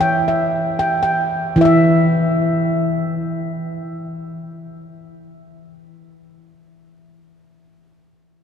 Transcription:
Already playing: E3 E5
0.01 G5
0.28 E5
0.79 G5
1.03 G5
1.56 E3 E4
1.61 E5
1.65 E5

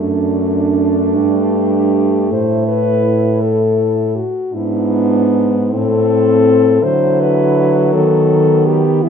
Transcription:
Already playing: F#2 A3 D4
1.16 G2 G4
2.31 A2 E4 C5
2.68 B4
3.41 A4
4.16 F#4
4.53 G#2 B3 D4 E4
5.72 A2 C4 A4
6.81 D3 F#3 E4 C5
7.20 B4
7.93 D#3 B3 A4
8.66 G4
9.03 E3 G3 E4

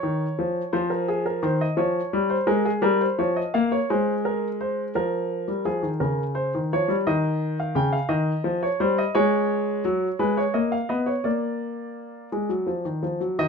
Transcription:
Already playing: C#5
0.03 D#3
0.39 F3
0.73 F3 C5
0.90 A#4
1.08 G#4
1.26 A#4
1.43 D#3 C5
1.61 D#5
1.77 F3 C#5
2.13 G3
2.30 C5
2.47 G#3 A#4
2.65 G#4
2.82 G3 A#4
3.01 C5
3.19 F3 C#5
3.36 D#5
3.54 A#3 F5
3.72 C#5
3.90 G#3 C5
4.25 A#4
4.61 C5
4.95 F3 A#4
5.48 G3
5.65 F3 G#4
5.83 D#3
6.00 C#3 A#4
6.35 C5
6.55 D#3
6.73 F3 C#5
6.88 G3
7.07 D#3 D#5
7.60 F5
7.75 C#3 G5
7.93 F5
8.09 D#3 D#5
8.44 F3
8.63 C#5
8.80 G3 C5
8.98 D#5
9.15 G#3 C#5
9.85 F#3
10.19 G#3 B4
10.37 C#5
10.54 A#3 D#5
10.72 F5
10.89 B3 D#5
11.06 C#5
11.24 A#3 D5
12.32 G#3
12.49 F#3
12.67 F3
12.85 D#3
13.03 F3
13.20 F#3
13.39 D#3 D#5

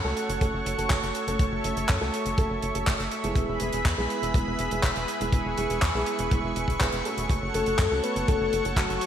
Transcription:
Already playing: A4 C#5 F#5 C#6
0.04 C#2 A3 C#4 F#4 A4
0.17 closed hi-hat
0.29 F#1, closed hi-hat
0.41 F#1 A3 C#4 F#4 A4, kick, closed hi-hat
0.54 F#1
0.66 F#1, closed hi-hat
0.78 F#1 A3 C#4 F#4 A4, closed hi-hat
0.90 F#1, kick, clap, closed hi-hat
1.03 F#1, closed hi-hat
1.15 closed hi-hat
1.27 F#1 A3 C#4 F#4 A4, closed hi-hat
1.39 F#1 E5, kick, closed hi-hat
1.52 F#1
1.64 F#1 A3 C#4 F#4 A4, closed hi-hat
1.77 F#1, closed hi-hat
1.89 F#2, kick, clap, closed hi-hat
2.01 C#2 A3 C#4 F#4 A4
2.14 closed hi-hat
2.26 F#1, closed hi-hat
2.38 F#1 A3 C#4 F#4 A4, kick, closed hi-hat
2.50 F#1
2.62 F#1, closed hi-hat
2.75 F#1 A3 C#4 F#4 A4, closed hi-hat
2.87 F#1, kick, clap, closed hi-hat
3.00 F#1, closed hi-hat
3.11 closed hi-hat
3.24 F#1 G#3 B3 E4 G#4, closed hi-hat
3.36 E1 G#4 B4 B5, kick, closed hi-hat
3.49 E1
3.60 E1 G#3 B3 E4 G#4, closed hi-hat
3.73 E1, closed hi-hat
3.85 E2, kick, clap, closed hi-hat
3.98 B1 G#3 B3 E4 G#4
4.10 closed hi-hat
4.22 E1, closed hi-hat
4.34 E1 G#3 B3 E4 G#4, kick, closed hi-hat
4.47 E1
4.59 E1, closed hi-hat
4.71 E1 G#3 B3 E4 G#4, closed hi-hat
4.83 E1, kick, clap, closed hi-hat
4.96 E1, closed hi-hat
5.08 closed hi-hat
5.21 E1 G#3 B3 E4 G#4, closed hi-hat
5.33 E1 C#6, kick, closed hi-hat
5.45 E1
5.58 E1 G#3 B3 E4 G#4, closed hi-hat
5.70 E1, closed hi-hat
5.81 E2, kick, clap, closed hi-hat
5.94 B1 G#3 B3 E4 G#4
6.06 closed hi-hat
6.19 E1, closed hi-hat
6.31 E1 G#3 B3 E4 G#4, kick, closed hi-hat
6.44 E1
6.56 E1, closed hi-hat
6.68 E1, kick, closed hi-hat
6.81 E1 G#3 B3 E4 B4, kick, clap, closed hi-hat
6.92 E1, closed hi-hat
7.05 A3 C#4 F#4 A4, closed hi-hat
7.17 E1, closed hi-hat
7.29 F#1 A4 C#5 F#5, kick, closed hi-hat
7.42 F#1
7.54 F#1 A3 C#4 F#4 A4, closed hi-hat
7.66 F#1, closed hi-hat
7.78 F#2, kick, clap, closed hi-hat
7.91 C#2 A3 C#4 F#4 A4
8.03 B4, closed hi-hat
8.16 F#1, closed hi-hat
8.28 F#1 A3 C#4 F#4 A4, kick, closed hi-hat
8.41 F#1
8.53 F#1, closed hi-hat
8.65 F#1 A3 C#4 F#4 A4, closed hi-hat
8.76 F#1 F#4, kick, clap, closed hi-hat
8.90 F#1, closed hi-hat
9.01 closed hi-hat

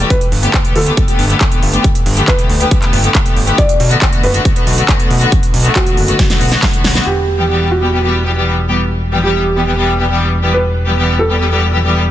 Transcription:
0.10 B4, kick, closed hi-hat
0.21 closed hi-hat
0.32 G1, open hi-hat
0.43 D3 A3 B3 G4, closed hi-hat
0.54 D3 A3 B3 G4, kick, clap, closed hi-hat
0.65 closed hi-hat
0.76 D2 A4, open hi-hat
0.86 D3 A3 B3 G4, closed hi-hat
0.97 D3 A3 B3 G4, kick, closed hi-hat
1.08 D3 A3 B3 G4, closed hi-hat
1.19 G1, open hi-hat
1.30 D3 A3 B3 G4, closed hi-hat
1.41 D3 A3 B3 G4, kick, clap, closed hi-hat
1.52 closed hi-hat
1.63 G1, open hi-hat
1.73 D3 A3 B3 G4, closed hi-hat
1.84 kick, closed hi-hat
1.95 closed hi-hat
2.06 G1, open hi-hat
2.17 D3 A3 B3 G4, closed hi-hat
2.28 D3 A3 B3 G4 B4, kick, clap, closed hi-hat
2.39 closed hi-hat
2.50 D2, open hi-hat
2.60 D3 A3 B3 G4, closed hi-hat
2.71 D3 A3 B3 G4, kick, closed hi-hat
2.82 D3 A3 B3 G4, clap, closed hi-hat
2.93 G1, open hi-hat
3.04 D3 A3 B3 G4, closed hi-hat
3.15 D3 A3 B3 G4, kick, clap, closed hi-hat
3.26 closed hi-hat
3.37 G1, open hi-hat
3.47 D3 A3 B3 G4, closed hi-hat
3.58 D5, kick, closed hi-hat
3.69 closed hi-hat
3.80 B1, open hi-hat
3.91 D3 A3 B3 F#4, closed hi-hat
4.02 D3 A3 B3 F#4, kick, clap, closed hi-hat
4.13 closed hi-hat
4.23 F#1 B4, open hi-hat
4.34 D3 A3 B3 F#4, closed hi-hat
4.45 D3 A3 B3 F#4, kick, closed hi-hat
4.56 D3 A3 B3 F#4, closed hi-hat
4.67 B1, open hi-hat
4.78 D3 A3 B3 F#4, closed hi-hat
4.89 D3 A3 B3 F#4, kick, clap, closed hi-hat
5.00 closed hi-hat
5.10 B1, open hi-hat
5.21 D3 A3 B3 F#4, closed hi-hat
5.32 kick, closed hi-hat
5.43 closed hi-hat
5.54 B1, open hi-hat
5.65 D3 A3 B3 F#4, closed hi-hat
5.76 D3 A3 B3 F#4, kick, clap, closed hi-hat
5.87 closed hi-hat
5.97 F#1, open hi-hat
6.08 D3 A3 B3 F#4, closed hi-hat
6.19 D3 A3 B3 F#4, kick, snare, closed hi-hat
6.30 D3 A3 B3 F#4, snare, closed hi-hat
6.41 B1, open hi-hat
6.52 D3 A3 B3 F#4, snare, closed hi-hat
6.63 D3 A3 B3 F#4, kick, snare, clap, closed hi-hat
6.73 closed hi-hat
6.84 B1, snare, open hi-hat
6.95 D3 A3 B3 F#4, snare, closed hi-hat
7.06 E1 G4
7.39 E3 G3 B3 G4
7.50 E3 G3 B3 G4
7.71 F#4
7.82 E3 G3 B3 G4
7.93 E3 G3 B3 G4
8.04 E3 G3 B3 G4
8.26 E3 G3 B3 G4
8.36 E3 G3 B3 G4
8.69 E3 G3 B3 G4
9.13 E3 G3 B3 G4
9.23 E3 G3 B3 G4
9.56 E3 G3 B3 G4
9.67 E3 G3 B3 G4
9.78 E3 G3 B3 G4
9.99 E3 G3 B3 G4
10.10 E3 G3 B3 G4
10.43 E3 G3 B3 G4
10.54 B4
10.87 E3 G3 B3 G4
10.98 E3 G3 B3 G4
11.19 A4
11.30 E3 G3 B3 G4
11.41 E3 G3 B3 G4
11.52 E3 G3 B3 G4
11.74 E3 G3 B3 G4
11.84 E3 G3 B3 G4

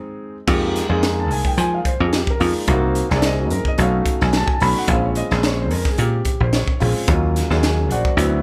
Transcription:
Already playing: G#3 C4 D#4 G#4
0.47 F2 G#3 A#3 D#4 G4, kick, crash
0.76 snare, closed hi-hat
0.89 F2 G#3 A#3 D#4 G#4
1.03 snare, closed hi-hat
1.20 A5
1.30 C2 G#5, open hi-hat
1.45 G5, muted slap bass stroke, kick
1.58 F3 G#5, closed hi-hat
1.74 F5
1.85 C5, kick, closed hi-hat
2.00 F2 G#4
2.13 G4, snare, closed hi-hat
2.27 A#4, muted slap bass stroke, kick
2.40 F2 G#3 A#3 D#4 F4, open hi-hat
2.67 C2 A#3 C4 D#4 F#4, kick, closed hi-hat
2.95 closed hi-hat
3.09 C2 A#3 C4 D#4 G#4 D5, snare
3.22 D#5, snare, closed hi-hat
3.40 F#4
3.50 F#2 A#4, closed hi-hat
3.65 D#5, muted slap bass stroke, kick
3.78 B1 A3 C#4 D#4 F#4 F5, closed hi-hat
4.06 kick, closed hi-hat
4.21 B1 G#5, snare
4.33 snare, closed hi-hat
4.37 A5
4.46 G#5, muted slap bass stroke, kick
4.54 A5
4.60 B1 A3 C#4 D#4 F#4 B5, open hi-hat
4.78 F#5
4.88 A#1 G#3 C4 C#4 F4 F5, kick, closed hi-hat
5.05 C#5
5.15 D#5, closed hi-hat
5.30 A#1 G#3 C4 C#4 G#4 C5, snare
5.43 C#5, snare, closed hi-hat
5.62 C5
5.71 F2 A#4, open hi-hat
5.85 G#4, muted slap bass stroke, kick, snare
5.98 A#2 G4, closed hi-hat
6.25 kick, closed hi-hat
6.40 A#1 C5
6.53 C#5, snare, closed hi-hat
6.67 muted slap bass stroke, kick
6.80 A#1 G#3 C4 C#4 F4, open hi-hat
7.08 D#2 F#3 A#3 C#4 F4, kick, closed hi-hat
7.36 snare, closed hi-hat
7.50 D#2 F#3 A#3 C#4 G#4, snare
7.63 G#4 G#5, snare, closed hi-hat
7.91 A#1 F#4 C5 D5 F#5, closed hi-hat
8.05 muted slap bass stroke, kick
8.17 D2 F#3 B3 C4 E4, closed hi-hat

